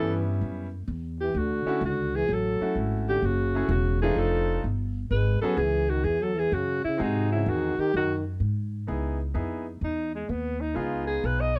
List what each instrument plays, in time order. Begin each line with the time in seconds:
Already playing: upright bass G2, trombone E3, grand piano G3 B3 C#4 E4, alto saxophone A4
0.41 upright bass F#2
0.88 upright bass E2
1.21 trombone E3, alto saxophone G4
1.34 upright bass D2, trombone D3, alto saxophone F#4
1.65 grand piano A3 C#4 E4 F#4, muted upright bass stroke
1.81 upright bass C#2
1.85 trombone D3, alto saxophone F#4
2.15 trombone E3, alto saxophone G#4
2.28 upright bass A1, trombone F#3
2.33 alto saxophone A4
2.61 grand piano A3 C#4 E4 F#4, muted upright bass stroke
2.75 upright bass G#1
3.07 trombone D3, alto saxophone G4
3.22 upright bass F#1, trombone C#3, alto saxophone F#4
3.55 grand piano A3 C#4 E4 G#4
3.68 upright bass E1, trombone C#3, alto saxophone F#4
4.00 trombone E3, grand piano A3 D4 D#4 F4, alto saxophone G#4
4.16 upright bass F1, trombone F3, alto saxophone A4
4.64 upright bass G1
5.11 upright bass G#1, trombone G#3, alto saxophone B4
5.42 trombone F#3, grand piano B3 C#4 F#4 G#4, alto saxophone A4, muted upright bass stroke
5.57 upright bass C#2, trombone E3, alto saxophone G#4
5.89 trombone D#3, alto saxophone F#4
6.04 upright bass E2, trombone E3, alto saxophone G#4
6.20 trombone F#3, alto saxophone A4
6.37 trombone E3, alto saxophone G#4
6.52 upright bass F#2, trombone C#3, alto saxophone F#4
6.84 trombone C#3, alto saxophone E4, muted upright bass stroke
6.98 upright bass G#2, grand piano C4 D#4 F#4 G#4
7.02 trombone C3, alto saxophone D#4
7.32 trombone C#3, alto saxophone E4
7.46 upright bass E2, trombone D#3, alto saxophone F#4
7.77 trombone D#3, alto saxophone G4, muted upright bass stroke
7.94 upright bass F#2, trombone D#3, alto saxophone F#4
8.40 upright bass G#2
8.87 upright bass C#2, grand piano B3 D#4 E4 G#4
9.34 upright bass F2, grand piano B3 D#4 E4 G#4
9.81 upright bass E2, alto saxophone D#4
10.15 alto saxophone G#3
10.29 upright bass D#2, alto saxophone B3
10.61 alto saxophone D#4
10.74 upright bass C#2, grand piano B3 D#4 F4 G#4, alto saxophone F4
11.07 alto saxophone G#4
11.24 upright bass B1, alto saxophone B4
11.41 alto saxophone D#5